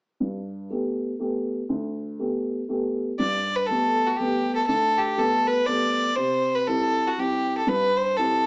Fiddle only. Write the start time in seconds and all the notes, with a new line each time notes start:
3.19 D5
3.56 B4
3.66 A4
4.07 F#4
4.17 G4
4.55 A4
4.67 A4
4.98 G4
5.19 A4
5.47 B4
5.66 D5
6.16 C5
6.55 B4
6.67 A4
7.07 F#4
7.19 G4
7.57 A4
7.68 B4
7.96 C5
8.17 A4